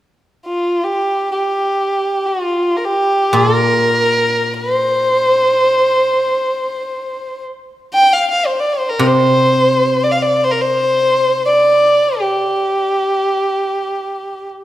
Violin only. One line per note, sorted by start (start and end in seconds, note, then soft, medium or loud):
0.46 0.85 F4 soft
0.84 1.31 G4 medium
1.32 2.28 G4 medium
2.27 2.78 F4 medium
2.77 2.86 A#4 soft
2.84 3.37 G4 medium
3.35 4.56 A#4 medium
4.54 4.73 B4 medium
4.73 7.43 C5 medium
7.94 8.14 G5 medium
8.13 8.29 F5 medium
8.31 8.48 F5 medium
8.46 8.62 C5 medium
8.60 8.75 D5 medium
8.73 8.91 C5 medium
8.90 9.09 A#4 medium
9.07 10.05 C5 medium
10.04 10.13 D5 medium
10.11 10.24 F5 medium
10.22 10.46 D5 medium
10.44 10.53 C5 medium
10.51 10.63 A#4 medium
10.61 11.45 C5 medium
11.46 12.20 D5 medium
12.19 14.49 G4 medium